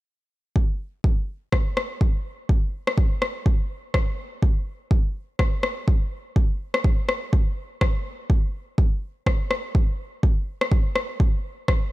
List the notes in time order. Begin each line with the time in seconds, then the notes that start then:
0.56 kick
1.04 kick
1.52 kick, cross-stick
1.77 cross-stick
2.01 kick
2.49 kick
2.87 cross-stick
2.98 kick
3.22 cross-stick
3.46 kick
3.94 kick, cross-stick
4.42 kick
4.91 kick
5.39 kick, cross-stick
5.63 cross-stick
5.88 kick
6.36 kick
6.74 cross-stick
6.84 kick
7.09 cross-stick
7.33 kick
7.81 kick, cross-stick
8.30 kick
8.78 kick
9.26 kick, cross-stick
9.51 cross-stick
9.75 kick
10.23 kick
10.61 cross-stick
10.72 kick
10.96 cross-stick
11.20 kick
11.68 kick, cross-stick